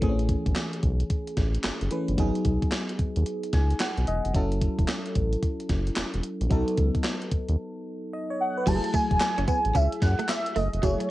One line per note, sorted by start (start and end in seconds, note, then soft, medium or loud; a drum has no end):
0.01 0.36 A1 loud
0.01 1.87 E3 medium
0.01 1.87 A3 medium
0.01 0.11 C4 medium
0.01 1.88 G#4 medium
0.01 kick loud
0.01 closed hi-hat medium
0.09 1.90 C#4 medium
0.19 closed hi-hat soft
0.29 kick medium
0.29 closed hi-hat medium
0.46 0.54 G#1 medium
0.46 kick medium
0.46 closed hi-hat soft
0.55 snare loud
0.55 clap medium
0.55 closed hi-hat medium
0.73 closed hi-hat soft
0.83 1.04 B1 medium
0.83 kick medium
0.83 closed hi-hat medium
1.00 closed hi-hat soft
1.10 kick medium
1.10 closed hi-hat medium
1.27 closed hi-hat soft
1.37 1.58 A1 medium
1.37 kick medium
1.37 snare medium
1.37 closed hi-hat medium
1.54 closed hi-hat medium
1.64 1.71 F#1 soft
1.64 snare loud
1.64 clap medium
1.64 closed hi-hat medium
1.81 1.89 F#1 medium
1.81 closed hi-hat soft
1.91 2.18 E3 medium
1.91 2.18 A3 soft
1.91 2.18 C#4 medium
1.91 2.19 B4 medium
1.91 closed hi-hat medium
2.08 2.16 G1 loud
2.08 closed hi-hat medium
2.17 2.31 G#1 medium
2.17 4.30 F#3 medium
2.17 4.30 B3 medium
2.17 4.31 D#4 medium
2.17 4.31 G#4 medium
2.17 kick loud
2.17 closed hi-hat medium
2.35 closed hi-hat medium
2.45 2.58 B1 medium
2.45 kick medium
2.45 closed hi-hat medium
2.62 kick medium
2.62 closed hi-hat soft
2.72 snare loud
2.72 clap medium
2.72 closed hi-hat medium
2.89 closed hi-hat soft
2.99 3.06 D#2 soft
2.99 kick medium
2.99 closed hi-hat medium
3.16 3.24 D#2 medium
3.16 closed hi-hat soft
3.26 closed hi-hat medium
3.44 closed hi-hat soft
3.53 3.74 C#2 medium
3.53 3.79 G#5 medium
3.53 kick medium
3.53 snare medium
3.53 closed hi-hat medium
3.71 closed hi-hat soft
3.80 4.06 F#5 medium
3.80 snare loud
3.80 clap medium
3.80 closed hi-hat medium
3.98 4.05 B1 medium
3.98 closed hi-hat soft
4.07 4.21 E1 medium
4.07 4.33 D#5 medium
4.07 closed hi-hat medium
4.25 4.32 F1 medium
4.25 closed hi-hat medium
4.34 4.68 F#1 loud
4.34 6.46 F#3 medium
4.34 6.47 C#4 medium
4.34 6.47 E4 medium
4.34 6.47 A4 medium
4.34 kick loud
4.34 closed hi-hat medium
4.52 closed hi-hat medium
4.62 kick medium
4.62 closed hi-hat medium
4.79 4.86 E1 medium
4.79 kick medium
4.79 closed hi-hat soft
4.88 snare loud
4.88 clap medium
4.88 closed hi-hat medium
5.06 closed hi-hat medium
5.15 5.36 A1 medium
5.15 kick medium
5.15 closed hi-hat medium
5.33 closed hi-hat soft
5.43 kick medium
5.43 closed hi-hat medium
5.60 closed hi-hat soft
5.69 5.90 F#1 medium
5.69 kick medium
5.69 snare medium
5.69 closed hi-hat medium
5.87 closed hi-hat medium
5.96 6.04 E1 soft
5.96 snare loud
5.96 clap medium
5.96 closed hi-hat medium
6.14 6.22 E1 medium
6.14 closed hi-hat medium
6.23 closed hi-hat medium
6.41 6.48 A#1 medium
6.41 closed hi-hat medium
6.50 6.64 B1 loud
6.50 8.62 F#3 medium
6.50 8.63 B3 medium
6.50 8.63 D#4 medium
6.50 8.64 A4 medium
6.50 kick loud
6.50 closed hi-hat medium
6.68 closed hi-hat soft
6.77 6.91 C#2 medium
6.77 kick medium
6.77 closed hi-hat medium
6.95 kick medium
6.95 closed hi-hat soft
7.04 snare loud
7.04 clap medium
7.04 closed hi-hat medium
7.22 closed hi-hat soft
7.31 7.39 D#2 soft
7.31 kick medium
7.31 closed hi-hat medium
7.48 7.56 D#2 medium
7.48 closed hi-hat soft
8.13 8.29 D#5 medium
8.30 8.56 C#5 medium
8.40 8.69 F#5 loud
8.57 8.83 B4 medium
8.66 8.80 F#1 loud
8.66 10.79 F#3 medium
8.66 8.77 F#3 medium
8.66 10.79 A3 medium
8.66 10.79 E4 medium
8.66 8.76 G4 medium
8.66 8.96 A5 loud
8.66 kick loud
8.66 closed hi-hat medium
8.66 crash medium
8.66 tambourine medium
8.75 10.83 G#4 medium
8.84 muted clean electric guitar stroke soft
8.84 closed hi-hat medium
8.94 9.04 A3 medium
8.94 9.77 G#5 loud
8.94 kick medium
8.94 closed hi-hat medium
8.94 tambourine medium
9.11 9.19 E1 medium
9.11 kick medium
9.11 closed hi-hat soft
9.20 muted clean electric guitar stroke medium
9.20 snare loud
9.20 clap medium
9.20 closed hi-hat medium
9.20 tambourine medium
9.38 9.46 F#1 loud
9.38 9.44 C#4 medium
9.38 closed hi-hat medium
9.48 9.58 B3 medium
9.48 kick loud
9.48 closed hi-hat medium
9.48 tambourine medium
9.65 9.73 A1 medium
9.65 closed hi-hat soft
9.75 9.88 C#2 loud
9.75 9.85 C#4 medium
9.75 10.02 E5 loud
9.75 kick medium
9.75 closed hi-hat medium
9.75 tambourine medium
9.92 closed hi-hat soft
10.02 10.15 F#2 loud
10.02 10.27 F#5 loud
10.02 muted clean electric guitar stroke soft
10.02 kick medium
10.02 snare medium
10.02 closed hi-hat medium
10.02 tambourine medium
10.19 10.25 A3 medium
10.19 closed hi-hat medium
10.29 10.58 E5 loud
10.29 snare loud
10.29 clap medium
10.29 clap loud
10.29 closed hi-hat medium
10.29 tambourine loud
10.46 closed hi-hat medium
10.56 10.69 F#1 medium
10.56 10.66 A3 medium
10.56 10.85 D#5 loud
10.56 open hi-hat medium
10.73 10.81 F1 medium
10.73 closed hi-hat medium
10.82 10.96 F#1 loud
10.82 11.11 F#3 medium
10.82 10.93 F#3 loud
10.82 11.11 A3 medium
10.82 11.11 E4 medium
10.82 11.11 G#4 medium
10.82 11.11 C#5 loud
10.82 kick loud
10.82 closed hi-hat medium
10.82 tambourine medium
11.00 muted clean electric guitar stroke soft
11.00 closed hi-hat medium